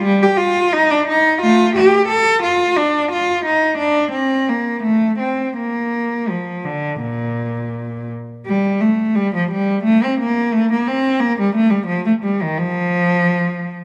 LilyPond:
\new Staff \with { instrumentName = "Cello" } { \time 4/4 \key bes \major \tempo 4 = 88 g16 g'16 f'8 ees'16 d'16 ees'8 <a f'>8 g'8 a'8 f'8 | d'8 f'8 ees'8 d'8 c'8 bes8 a8 c'8 | bes4 f8 d8 bes,4. r8 | g8 a8 g16 f16 g8 a16 c'16 bes8 a16 bes16 c'8 |
bes16 g16 a16 g16 f16 a16 g16 ees16 f4.~ f16 r16 | }